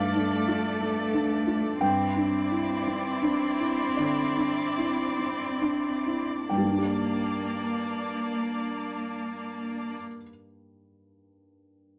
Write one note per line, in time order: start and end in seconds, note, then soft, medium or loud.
0.00 1.77 G2 soft
0.00 0.81 A3 soft
0.00 1.76 A3 soft
0.00 1.77 A3 soft
0.00 0.15 D4 soft
0.00 0.48 F4 soft
0.00 1.77 A4 soft
0.00 1.79 D5 soft
0.00 1.83 E5 medium
0.00 1.76 F5 medium
0.15 0.67 D4 soft
0.48 1.00 F4 soft
0.81 1.33 A3 soft
1.13 1.67 D4 soft
1.47 1.81 F4 soft
1.81 3.93 G2 soft
1.81 6.50 C4 soft
1.81 6.17 C4 soft
1.81 6.50 E4 soft
1.81 6.46 D5 soft
1.81 3.93 G5 medium
2.16 2.72 D4 soft
2.51 3.08 E4 soft
2.87 3.45 C4 soft
3.22 3.82 D4 soft
3.60 4.21 E4 soft
3.96 4.61 D3 soft
3.96 6.45 D5 soft
4.37 5.02 D4 soft
4.78 5.44 E4 soft
5.19 5.88 C4 soft
5.61 6.32 D4 soft
6.06 6.50 E4 soft
6.49 9.94 G2 soft
6.49 9.93 A#3 soft
6.49 9.94 A#3 soft
6.49 9.93 D4 soft
6.49 9.94 D5 soft
6.49 9.93 G5 soft
6.57 10.01 G3 soft
6.64 10.08 A#3 soft
6.71 10.15 D4 soft
6.78 10.22 G4 soft
6.85 10.29 D5 soft